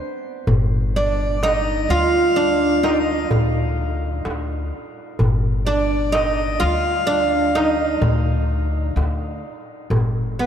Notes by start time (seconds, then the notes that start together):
0.47 G1, darbuka dum
0.96 D4 D5
1.43 D#4 D#5, darbuka tek
1.89 D2 F4 F5
2.36 D4
2.83 D#4 D#5, darbuka tek
2.91 D5
2.99 D#5
3.31 D2, darbuka dum
3.78 darbuka ka
4.25 D2, darbuka tek
5.19 G1, darbuka dum
5.65 D4 D5
6.12 D#4 D#5, darbuka tek
6.60 D2 F4 F5
7.07 D4
7.55 D#4 D#5, darbuka tek
8.01 D2, darbuka dum
8.51 darbuka ka
8.96 D2, darbuka tek
9.90 G1, darbuka dum
10.39 B3 B4